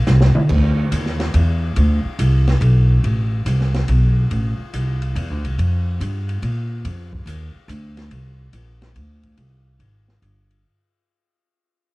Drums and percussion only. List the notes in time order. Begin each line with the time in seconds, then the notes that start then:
0.07 snare, hi-hat pedal
0.21 snare
0.35 mid tom
0.49 kick, crash
0.92 hi-hat pedal, ride
1.06 snare
1.20 snare, ride
1.34 ride
1.76 ride
2.19 hi-hat pedal, ride
2.47 snare, ride
2.62 ride
3.04 ride
3.46 hi-hat pedal, ride
3.61 snare
3.74 snare, ride
3.88 ride
4.31 ride
4.74 hi-hat pedal, ride
5.02 ride
5.16 ride
5.45 ride
5.59 ride
6.01 hi-hat pedal, ride
6.29 ride
6.43 ride
6.85 ride
7.13 kick
7.27 hi-hat pedal, ride
7.69 hi-hat pedal, ride
7.97 snare, ride
8.11 ride
8.53 hi-hat pedal, ride
8.82 snare, ride
8.96 ride
9.23 kick, ride
9.38 ride
9.80 ride
10.08 snare
10.22 hi-hat pedal, ride
10.51 ride